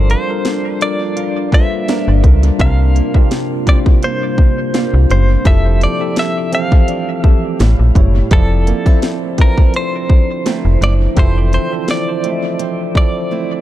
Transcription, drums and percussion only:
0.10 closed hi-hat medium
0.45 snare loud
0.45 closed hi-hat medium
0.81 closed hi-hat medium
1.17 closed hi-hat medium
1.52 kick loud
1.88 snare loud
1.88 closed hi-hat medium
2.24 kick medium
2.24 closed hi-hat medium
2.43 closed hi-hat medium
2.59 kick loud
2.59 closed hi-hat medium
2.96 closed hi-hat medium
3.14 kick medium
3.31 snare loud
3.31 closed hi-hat medium
3.67 kick loud
3.67 closed hi-hat medium
3.86 kick loud
4.03 closed hi-hat medium
4.38 kick loud
4.74 snare loud
4.74 closed hi-hat medium
5.11 closed hi-hat medium
5.45 kick loud
5.45 closed hi-hat medium
5.81 closed hi-hat medium
6.16 snare loud
6.16 closed hi-hat medium
6.53 closed hi-hat medium
6.72 kick loud
6.88 closed hi-hat medium
7.24 kick loud
7.60 snare loud
7.60 closed hi-hat medium
7.95 kick medium
7.95 closed hi-hat medium
8.31 kick loud
8.31 closed hi-hat medium
8.67 closed hi-hat medium
8.86 kick loud
9.02 snare loud
9.02 closed hi-hat medium
9.38 kick medium
9.38 closed hi-hat medium
9.58 kick loud
9.74 closed hi-hat medium
10.10 kick loud
10.46 snare loud
10.46 closed hi-hat medium
10.82 closed hi-hat medium
11.17 kick loud
11.17 closed hi-hat medium
11.53 closed hi-hat medium
11.88 snare loud
11.88 closed hi-hat medium
12.24 closed hi-hat medium
12.59 closed hi-hat medium
12.95 kick loud

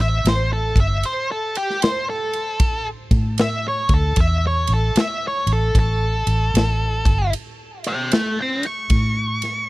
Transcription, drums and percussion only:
0.00 snare soft
0.25 snare loud
0.25 ride medium
0.76 kick medium
0.76 ride medium
1.03 ride medium
1.55 ride medium
1.70 snare soft
1.82 snare loud
1.82 ride medium
2.33 ride medium
2.60 kick loud
2.60 ride medium
3.11 kick loud
3.11 ride medium
3.38 snare loud
3.38 ride medium
3.89 kick medium
3.89 ride medium
4.16 kick loud
4.16 ride medium
4.67 ride medium
4.96 snare loud
4.96 ride medium
5.47 ride medium
5.75 kick loud
5.75 ride medium
6.27 ride medium
6.55 snare loud
6.55 ride medium
7.05 kick loud
7.05 ride medium
7.33 ride medium
7.84 ride medium
8.11 snare loud
8.11 ride medium
8.63 ride medium
8.90 kick loud
8.90 ride medium
9.42 snare soft
9.42 ride medium

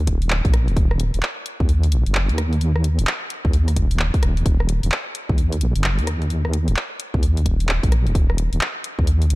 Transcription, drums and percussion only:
0.07 kick medium
0.07 closed hi-hat loud
0.22 closed hi-hat medium
0.30 clap loud
0.45 kick loud
0.45 closed hi-hat soft
0.54 cross-stick medium
0.54 closed hi-hat loud
0.68 closed hi-hat soft
0.77 kick loud
0.77 closed hi-hat medium
0.91 cross-stick medium
1.00 closed hi-hat loud
1.14 closed hi-hat medium
1.23 clap loud
1.46 closed hi-hat loud
1.60 kick loud
1.69 closed hi-hat medium
1.83 closed hi-hat medium
1.92 closed hi-hat loud
2.06 closed hi-hat medium
2.15 clap loud
2.29 closed hi-hat soft
2.38 cross-stick medium
2.38 closed hi-hat loud
2.53 closed hi-hat soft
2.61 closed hi-hat medium
2.76 cross-stick medium
2.84 closed hi-hat loud
2.99 closed hi-hat medium
3.07 clap loud
3.30 closed hi-hat loud
3.45 kick loud
3.53 closed hi-hat medium
3.68 cross-stick soft
3.68 closed hi-hat medium
3.76 kick medium
3.76 closed hi-hat loud
3.91 closed hi-hat medium
3.99 clap loud
4.14 kick loud
4.14 closed hi-hat soft
4.23 cross-stick medium
4.23 closed hi-hat loud
4.37 closed hi-hat soft
4.46 kick loud
4.46 closed hi-hat medium
4.60 cross-stick medium
4.69 closed hi-hat loud
4.83 closed hi-hat medium
4.92 clap loud
5.15 closed hi-hat loud
5.29 kick loud
5.38 closed hi-hat medium
5.52 closed hi-hat medium
5.61 closed hi-hat loud
5.76 closed hi-hat medium
5.84 clap loud
5.99 closed hi-hat medium
6.07 cross-stick medium
6.07 closed hi-hat loud
6.22 closed hi-hat soft
6.30 closed hi-hat medium
6.45 cross-stick medium
6.53 closed hi-hat loud
6.68 closed hi-hat medium
6.77 clap loud
7.00 closed hi-hat loud
7.14 kick loud
7.23 closed hi-hat medium
7.37 closed hi-hat medium
7.46 kick medium
7.46 closed hi-hat loud
7.60 closed hi-hat medium
7.69 clap loud
7.83 kick loud
7.83 closed hi-hat medium
7.92 cross-stick medium
7.92 closed hi-hat loud
8.07 closed hi-hat soft
8.15 kick loud
8.15 closed hi-hat medium
8.30 cross-stick medium
8.38 closed hi-hat loud
8.53 closed hi-hat medium
8.61 clap loud
8.84 closed hi-hat loud
8.99 kick loud
9.07 closed hi-hat medium
9.22 closed hi-hat medium
9.30 closed hi-hat loud

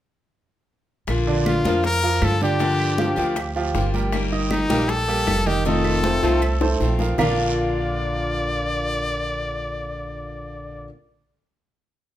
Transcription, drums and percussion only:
1.08 high bongo medium
1.08 high conga soft
1.08 long guiro medium
1.08 claves medium
1.27 high conga soft
1.46 high bongo medium
1.46 high conga medium
1.46 short guiro medium
1.46 claves medium
1.65 high bongo soft
1.65 high conga medium
1.65 short guiro medium
1.84 high bongo medium
1.84 high conga soft
1.84 long guiro medium
2.03 high bongo soft
2.03 high conga soft
2.22 high bongo medium
2.22 low bongo medium
2.22 high conga medium
2.22 short guiro medium
2.22 claves medium
2.41 high bongo soft
2.41 high conga medium
2.41 short guiro medium
2.60 high bongo medium
2.60 high conga soft
2.60 long guiro medium
2.79 high conga soft
2.79 claves medium
2.98 high bongo medium
2.98 high conga medium
2.98 short guiro medium
3.18 high bongo soft
3.18 high conga soft
3.18 short guiro medium
3.36 high bongo medium
3.36 high conga soft
3.36 long guiro medium
3.36 claves medium
3.55 high bongo soft
3.55 high conga soft
3.75 high bongo medium
3.75 low bongo medium
3.75 high conga soft
3.75 short guiro medium
3.94 high bongo soft
3.94 high conga medium
3.94 short guiro medium
4.12 high bongo medium
4.12 high conga soft
4.12 long guiro medium
4.12 claves medium
4.32 high conga soft
4.50 high bongo medium
4.50 high conga medium
4.50 short guiro medium
4.50 claves medium
4.70 high conga loud
4.70 short guiro medium
4.89 high bongo medium
4.89 high conga soft
4.89 long guiro medium
5.08 high bongo soft
5.08 high conga soft
5.27 high bongo medium
5.27 low bongo medium
5.27 high conga medium
5.27 short guiro medium
5.27 claves medium
5.46 high bongo soft
5.46 high conga medium
5.46 short guiro medium
5.65 high bongo medium
5.65 high conga soft
5.65 long guiro medium
5.84 high bongo medium
5.84 high conga soft
5.84 claves medium
6.04 high bongo medium
6.04 high conga medium
6.04 short guiro medium
6.23 high bongo medium
6.23 short guiro medium
6.42 high conga soft
6.42 long guiro medium
6.42 claves medium
6.61 low bongo loud
6.61 high conga soft
6.80 low bongo medium
6.80 high conga soft
6.80 short guiro medium
6.99 low bongo medium
6.99 high conga medium
6.99 short guiro medium
7.18 low bongo loud
7.18 low conga medium
7.18 long guiro loud
7.18 claves medium

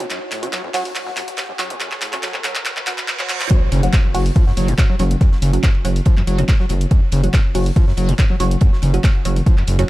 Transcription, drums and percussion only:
0.00 closed hi-hat medium
0.00 mid tom loud
0.10 clap medium
0.10 closed hi-hat medium
0.10 ride medium
0.21 mid tom medium
0.32 snare medium
0.32 clap medium
0.32 open hi-hat loud
0.32 ride medium
0.43 closed hi-hat medium
0.43 mid tom medium
0.53 snare loud
0.53 clap medium
0.53 closed hi-hat medium
0.53 ride medium
0.64 mid tom medium
0.74 clap medium
0.74 open hi-hat loud
0.74 open hi-hat medium
0.85 open hi-hat medium
0.85 mid tom medium
0.95 clap medium
0.95 closed hi-hat medium
0.95 ride medium
1.07 snare medium
1.07 mid tom loud
1.17 clap medium
1.17 open hi-hat loud
1.17 ride medium
1.28 closed hi-hat medium
1.28 mid tom medium
1.37 snare loud
1.37 clap medium
1.37 closed hi-hat medium
1.37 ride medium
1.49 mid tom medium
1.59 snare soft
1.59 clap medium
1.59 open hi-hat loud
1.59 ride medium
1.70 closed hi-hat medium
1.70 mid tom medium
1.80 clap medium
1.80 closed hi-hat medium
1.80 ride medium
1.92 snare medium
1.92 clap medium
1.92 mid tom medium
2.01 clap medium
2.01 open hi-hat loud
2.01 ride medium
2.13 clap medium
2.13 closed hi-hat medium
2.13 mid tom medium
2.13 ride soft
2.23 snare loud
2.23 clap medium
2.23 closed hi-hat medium
2.23 ride medium
2.33 clap medium
2.33 mid tom medium
2.33 ride soft
2.44 clap loud
2.44 open hi-hat loud
2.44 ride medium
2.55 clap medium
2.55 closed hi-hat medium
2.55 mid tom medium
2.65 snare medium
2.65 clap loud
2.65 closed hi-hat medium
2.65 ride medium
2.77 clap medium
2.77 mid tom medium
2.87 clap loud
2.87 open hi-hat loud
2.87 ride medium
2.98 clap medium
2.98 closed hi-hat medium
2.98 mid tom medium
3.07 snare loud
3.07 clap loud
3.07 open hi-hat medium
3.07 ride medium
3.19 snare soft
3.19 clap loud
3.19 mid tom medium
3.29 clap loud
3.29 open hi-hat loud
3.29 ride medium
3.41 clap medium
3.41 closed hi-hat medium
3.41 mid tom medium
3.50 kick loud
3.50 closed hi-hat medium
3.50 mid tom medium
3.50 ride medium
3.72 snare medium
3.72 open hi-hat loud
3.72 ride medium
3.83 closed hi-hat medium
3.93 kick loud
3.93 snare loud
3.93 clap loud
3.93 closed hi-hat medium
3.93 ride medium
4.05 mid tom medium
4.14 open hi-hat medium
4.14 open hi-hat loud
4.26 open hi-hat medium
4.36 kick loud
4.36 closed hi-hat medium
4.36 ride medium
4.47 snare medium
4.57 open hi-hat loud
4.57 mid tom medium
4.57 ride medium
4.68 closed hi-hat medium
4.78 kick loud
4.78 snare loud
4.78 clap loud
4.78 closed hi-hat medium
4.99 snare soft
4.99 open hi-hat loud
4.99 ride medium
5.11 closed hi-hat medium
5.11 mid tom medium
5.21 kick loud
5.21 closed hi-hat medium
5.21 ride medium
5.32 snare medium
5.42 open hi-hat loud
5.42 ride medium
5.53 closed hi-hat medium
5.53 ride soft
5.63 kick loud
5.63 snare loud
5.63 clap loud
5.63 closed hi-hat medium
5.63 mid tom medium
5.63 ride medium
5.75 ride soft
5.85 open hi-hat loud
5.85 ride medium
5.96 open hi-hat medium
6.05 kick loud
6.05 closed hi-hat medium
6.05 ride medium
6.17 clap soft
6.17 mid tom medium
6.27 open hi-hat loud
6.27 ride medium
6.38 closed hi-hat medium
6.38 ride soft
6.48 kick loud
6.48 snare loud
6.48 clap loud
6.48 open hi-hat medium
6.48 ride loud
6.59 snare soft
6.69 open hi-hat loud
6.69 mid tom medium
6.69 ride medium
6.81 closed hi-hat medium
6.91 kick loud
6.91 closed hi-hat medium
6.91 ride medium
7.12 snare medium
7.12 open hi-hat loud
7.12 ride medium
7.24 closed hi-hat medium
7.24 mid tom medium
7.34 kick loud
7.34 snare loud
7.34 clap loud
7.34 closed hi-hat medium
7.34 ride medium
7.55 open hi-hat medium
7.55 open hi-hat loud
7.66 open hi-hat medium
7.76 kick loud
7.76 closed hi-hat medium
7.76 mid tom medium
7.76 ride medium
7.88 snare soft
7.97 open hi-hat loud
7.97 ride medium
8.09 closed hi-hat medium
8.18 kick loud
8.18 snare loud
8.18 clap loud
8.18 closed hi-hat medium
8.18 ride medium
8.30 mid tom medium
8.39 snare soft
8.39 open hi-hat loud
8.39 ride medium
8.51 closed hi-hat medium
8.61 kick loud
8.61 closed hi-hat medium
8.61 ride medium
8.73 snare medium
8.82 open hi-hat loud
8.82 mid tom medium
8.82 ride medium
8.93 closed hi-hat medium
8.93 ride soft
9.03 kick loud
9.03 snare loud
9.03 clap loud
9.03 closed hi-hat medium
9.03 ride medium
9.15 ride soft
9.25 open hi-hat loud
9.25 ride medium
9.36 open hi-hat medium
9.36 mid tom medium
9.46 kick loud
9.46 closed hi-hat medium
9.46 ride medium
9.58 clap soft
9.67 open hi-hat loud
9.67 ride medium
9.78 snare soft
9.78 closed hi-hat medium

